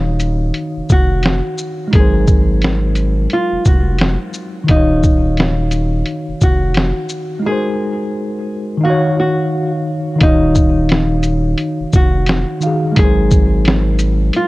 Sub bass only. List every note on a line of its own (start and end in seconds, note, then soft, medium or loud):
0.00 0.52 D#1 loud
0.77 0.82 F1 soft
0.90 1.41 F1 medium
1.94 3.27 G#1 loud
3.52 3.58 F1 soft
3.66 4.17 F1 medium
4.70 6.03 D#1 loud
6.29 6.34 F1 soft
6.42 6.93 F1 medium
10.21 11.55 D#1 loud
11.80 11.86 F1 soft
11.94 12.45 F1 medium
12.97 14.31 G#1 loud